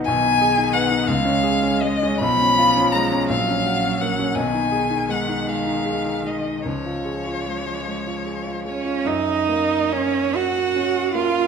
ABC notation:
X:1
M:6/8
L:1/16
Q:3/8=53
K:F#
V:1 name="Violin"
g4 f2 e4 d2 | b4 a2 e4 f2 | g4 f2 e4 d2 | c8- c2 c2 |
d4 c2 f4 e2 |]
V:2 name="Grand piano"
B,,, D G D B, D C,, C G C G, C | B,,, C E C G, C A,,, C F C A, C | B,,, D G D G, D G, D G D G, D | C,, E G E G, E G, E G E G, E |
F,,2 A,2 C2 F2 C2 A,2 |]
V:3 name="Cello" clef=bass
D,6 G,6 | E,6 F,6 | D,12 | E,8- E,2 C2 |
D4 C2 F4 E2 |]